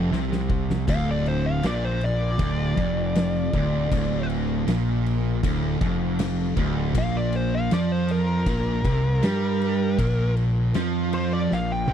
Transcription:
Already playing: distorted electric guitar F2
0.12 fingered electric bass C2, distorted electric guitar C3, snare
0.32 snare
0.50 kick
0.70 snare
0.87 fingered electric bass D1, distorted electric guitar D2, lead electric guitar F5, kick, crash
1.11 lead electric guitar D5
1.26 lead electric guitar C5, crash
1.46 lead electric guitar F5
1.63 fingered electric bass A#1, distorted electric guitar A#2, lead electric guitar D5, snare, crash
1.85 lead electric guitar C5
2.01 lead electric guitar D5, crash
2.38 fingered electric bass D1, distorted electric guitar D2, kick, crash
2.76 fingered electric bass F1, distorted electric guitar F2, kick, crash
3.15 snare, crash
3.53 fingered electric bass D1, distorted electric guitar D2, kick, crash
3.91 fingered electric bass D1, distorted electric guitar D2, kick, crash
4.30 crash
4.67 fingered electric bass A#1, distorted electric guitar A#2, snare, crash
5.06 crash
5.43 fingered electric bass D1, distorted electric guitar D2, kick, crash
5.81 fingered electric bass F1, distorted electric guitar F2, kick, crash
6.19 snare, crash
6.57 fingered electric bass D1, distorted electric guitar D2, kick, crash
6.95 fingered electric bass A#1, distorted electric guitar A#2, lead electric guitar F5, kick, crash
7.17 lead electric guitar D5
7.33 lead electric guitar C5, crash
7.55 lead electric guitar F5
7.71 fingered electric bass F2, distorted electric guitar F3, lead electric guitar D5, snare, crash
7.92 lead electric guitar C5
8.08 lead electric guitar A#4, crash
8.46 fingered electric bass A#1, distorted electric guitar A#2, kick, crash
8.85 fingered electric bass C2, distorted electric guitar C3, kick, crash
9.22 fingered electric bass G2, distorted electric guitar G3, snare, crash
9.61 crash
9.99 fingered electric bass A#1, distorted electric guitar A#2, kick, crash
10.37 crash
10.74 fingered electric bass F2, distorted electric guitar F3, snare, crash
11.13 lead electric guitar C5, crash
11.33 lead electric guitar D5
11.51 fingered electric bass A#1, distorted electric guitar A#2, lead electric guitar F5, snare
11.72 lead electric guitar G5
11.88 fingered electric bass C2, distorted electric guitar C3, high tom

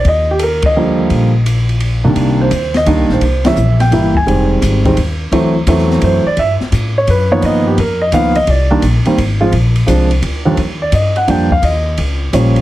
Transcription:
0.04 upright bass D#2, grand piano D#5, kick, ride
0.31 grand piano G4
0.39 grand piano A4 A#4, hi-hat pedal, ride
0.62 grand piano D#5, kick, ride
0.76 grand piano D3 F3 G3 A#3
1.10 upright bass A#1, kick, ride
1.46 hi-hat pedal, ride
1.69 ride
1.80 ride
2.04 grand piano C2 D#3 G3 A#3 D4
2.16 upright bass C2, kick, ride
2.41 grand piano C5
2.50 upright bass D#2, kick, hi-hat pedal, ride
2.74 grand piano D#5, snare, ride
2.86 upright bass D2, grand piano D#3 G3 A#3 D4, kick, ride
2.97 upright bass C2
3.09 upright bass A#1, snare
3.13 grand piano C5
3.21 upright bass C2, kick, ride
3.45 grand piano E3 G3 A#3 C#4 E5, snare, ride
3.56 upright bass A#1, hi-hat pedal
3.80 grand piano G5, snare, ride
3.91 upright bass G1, grand piano E3 G3 A#3 E4, kick, snare, ride
4.15 grand piano G#5, kick
4.26 upright bass F1, grand piano D#3 G3 G#3 C4, kick, ride
4.62 upright bass G#1, kick, hi-hat pedal, ride
4.85 grand piano D#3 G3 G#3 C4, kick, ride
4.97 upright bass D#2, kick, ride
5.32 upright bass D2, grand piano E3 F#3 A3 C4, kick, ride
5.67 upright bass E2, grand piano E3 F#3 A3 C4, kick, hi-hat pedal, ride
5.78 snare
5.90 snare
6.02 upright bass F#2, grand piano C5, kick, ride
6.25 grand piano D5, muted upright bass stroke
6.37 upright bass G2, grand piano E5, kick, ride
6.60 muted upright bass stroke, snare
6.72 upright bass A2, kick, hi-hat pedal, ride
6.98 grand piano C#5
7.07 upright bass F#2, grand piano B4, kick, ride
7.31 grand piano D#3 F3 A#3 B3 C#5
7.41 upright bass G2, grand piano D5, kick, ride
7.45 grand piano D#5
7.67 grand piano G4
7.78 upright bass F2, grand piano A#4, kick, ride
8.02 grand piano D#5
8.12 upright bass C#2, grand piano D#3 F3 A#3 B3 F5, kick, hi-hat pedal, ride
8.35 grand piano D#5, ride
8.47 upright bass C2, grand piano D5, kick, ride
8.70 grand piano D#3 G3 A#3 D4
8.82 upright bass A#1, kick, hi-hat pedal, ride
9.05 grand piano D#3 G3 A#3 C4, ride
9.17 upright bass G#1, kick, ride
9.41 grand piano F3 G#3 C4 F4
9.52 upright bass A#1, kick, ride
9.76 ride
9.87 upright bass C2, grand piano F3 G#3 C4 D4, kick, hi-hat pedal, ride
10.11 ride
10.22 upright bass D2, kick, ride
10.45 grand piano D#2 F3 G3 A#3 D4
10.57 upright bass D#2, kick, ride
10.82 grand piano D5
10.92 upright bass G2, grand piano D#5, kick, hi-hat pedal, ride
11.16 grand piano F#5, ride
11.27 upright bass F2, grand piano F3 G3 A#3 D4 G5, kick, ride
11.51 grand piano F5, kick
11.62 upright bass D#2, grand piano D#5, kick, ride
11.97 upright bass C#2, kick, ride
12.33 upright bass A#1, grand piano F3 G3 A#3 C#4, kick, hi-hat pedal, ride
12.56 ride

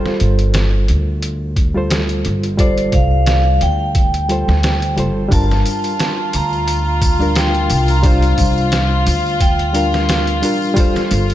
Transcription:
Already playing: reed electric piano G3 F4 A4 C5
0.06 snare
0.20 upright bass G1, closed hi-hat
0.39 closed hi-hat
0.54 snare, closed hi-hat
0.88 upright bass D2, closed hi-hat
1.23 closed hi-hat
1.56 kick, closed hi-hat
1.74 reed electric piano G3 F4 A4 C5
1.90 snare, closed hi-hat
2.09 closed hi-hat
2.25 upright bass G1, closed hi-hat
2.43 closed hi-hat
2.57 reed electric piano G3 F4 A4 D5, vibraphone C5, kick, closed hi-hat
2.78 closed hi-hat
2.92 upright bass C2, vibraphone F5, kick, closed hi-hat
3.26 vibraphone F5, snare, closed hi-hat
3.61 upright bass D2, vibraphone G5, closed hi-hat
3.95 kick, closed hi-hat
4.14 closed hi-hat
4.29 reed electric piano G3 F4 A4 C5, closed hi-hat
4.48 upright bass D2, snare
4.63 snare, closed hi-hat
4.82 closed hi-hat
4.96 upright bass G1, reed electric piano G3 F4 A4 C5, closed hi-hat
5.28 upright bass G1, reed electric piano G3 D4 F4, string section F4, kick, closed hi-hat, tambourine
5.34 reed electric piano A#4, vibraphone A5
5.51 snare, tambourine
5.66 closed hi-hat, tambourine
5.84 closed hi-hat, tambourine
6.00 snare, closed hi-hat, tambourine
6.33 upright bass D2, vibraphone A#5, closed hi-hat, tambourine
6.53 tambourine
6.68 closed hi-hat, tambourine
7.02 kick, closed hi-hat, tambourine
7.19 reed electric piano G3 D4 F4 A#4, tambourine
7.35 vibraphone G5, snare, closed hi-hat, tambourine
7.54 closed hi-hat
7.70 upright bass C2, closed hi-hat, tambourine
7.88 vibraphone A#5, closed hi-hat, tambourine
8.03 reed electric piano G3 D4 F4 C5, vibraphone F5, kick, closed hi-hat, tambourine
8.22 closed hi-hat, tambourine
8.38 upright bass C2, kick, closed hi-hat, tambourine
8.58 tambourine
8.72 snare, closed hi-hat, tambourine
9.07 upright bass D2, closed hi-hat, tambourine
9.26 tambourine
9.40 vibraphone G5, kick, closed hi-hat, tambourine
9.59 closed hi-hat
9.73 reed electric piano G3 D4 F4 A#4, vibraphone F5, closed hi-hat, tambourine
9.94 snare, tambourine
10.09 snare, closed hi-hat, tambourine
10.27 closed hi-hat
10.42 reed electric piano G3 D4 F4 A#4, closed hi-hat, tambourine
10.62 tambourine
10.74 reed electric piano G3 F4, kick, closed hi-hat, tambourine
10.78 reed electric piano A4 C5
10.96 snare, tambourine
11.11 upright bass G1, closed hi-hat, tambourine
11.30 closed hi-hat, tambourine

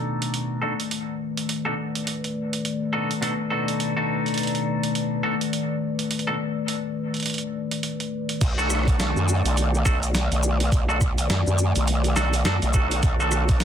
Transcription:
Already playing: clean electric guitar B2 D4 D#4 F#4 A4, analog synth pad D#3 A3 B4 D5
0.22 closed hi-hat
0.34 closed hi-hat
0.62 clean electric guitar B2 D4 D#4 F#4 A4
0.80 closed hi-hat
0.91 closed hi-hat
1.37 closed hi-hat
1.49 closed hi-hat
1.65 clean electric guitar B2 D4 D#4 F#4 A4
1.95 closed hi-hat
2.07 closed hi-hat
2.24 closed hi-hat
2.53 closed hi-hat
2.65 closed hi-hat
2.93 clean electric guitar B2 D4 D#4 F#4 A4
3.11 closed hi-hat
3.21 clean electric guitar B2 D4 D#4 F#4 A4, closed hi-hat
3.50 clean electric guitar B2 D4 D#4 F#4 A4
3.68 closed hi-hat
3.80 closed hi-hat
3.97 clean electric guitar B2 D4 D#4 F#4 A4
4.26 closed hi-hat
4.28 closed hi-hat
4.34 closed hi-hat
4.38 closed hi-hat
4.43 closed hi-hat
4.47 closed hi-hat
4.55 closed hi-hat
4.83 closed hi-hat
4.95 closed hi-hat
5.23 clean electric guitar B2 D4 D#4 F#4 A4
5.41 closed hi-hat
5.53 closed hi-hat
5.99 closed hi-hat
6.11 closed hi-hat
6.19 closed hi-hat
6.27 clean electric guitar B2 D4 D#4 F#4 A4
6.68 closed hi-hat
7.14 closed hi-hat
7.17 closed hi-hat
7.20 closed hi-hat
7.23 closed hi-hat
7.26 closed hi-hat
7.30 closed hi-hat
7.34 closed hi-hat
7.38 closed hi-hat
7.71 closed hi-hat
7.83 closed hi-hat
8.00 closed hi-hat
8.29 closed hi-hat
8.41 wobble bass B1, analog synth pad D#3 A3 D5, kick, closed hi-hat, crash, shaker
8.58 clean electric guitar D4 D#4 F#4 A4, shaker
8.70 cross-stick, shaker
8.75 cross-stick
8.79 cross-stick
8.83 kick, cross-stick
8.88 closed hi-hat, shaker
8.99 wobble bass B1, snare, closed hi-hat, shaker
9.16 wobble bass F#2, shaker
9.28 shaker
9.45 wobble bass B1, closed hi-hat, shaker
9.57 closed hi-hat, shaker
9.74 shaker
9.85 wobble bass B1, clean electric guitar D4 D#4 F#4 A4, kick, cross-stick, shaker
10.03 closed hi-hat, shaker
10.15 snare, closed hi-hat, shaker
10.31 wobble bass B1, closed hi-hat, shaker
10.43 shaker
10.60 closed hi-hat
10.72 wobble bass B1, kick, closed hi-hat, shaker
10.89 clean electric guitar D4 D#4 F#4 A4, shaker
11.01 kick, cross-stick, shaker
11.18 closed hi-hat, shaker
11.30 wobble bass F#2, snare, closed hi-hat, shaker
11.47 wobble bass F#2, shaker
11.58 shaker
11.76 wobble bass B1, closed hi-hat, shaker
11.88 closed hi-hat, shaker
12.04 closed hi-hat, shaker
12.16 wobble bass B1, clean electric guitar D4 D#4 F#4 A4, snare, shaker
12.33 closed hi-hat, shaker
12.45 wobble bass F#2, clean electric guitar D4 D#4 F#4 A4, snare, closed hi-hat, shaker
12.62 wobble bass B1, closed hi-hat, shaker
12.74 clean electric guitar D4 D#4 F#4 A4, kick, shaker
12.91 closed hi-hat, shaker
13.03 wobble bass B1, analog synth pad C#5, kick, closed hi-hat, shaker
13.20 clean electric guitar D4 D#4 F#4 A4, shaker
13.32 cross-stick, shaker
13.49 kick, closed hi-hat, shaker
13.60 wobble bass B1, snare, closed hi-hat, shaker

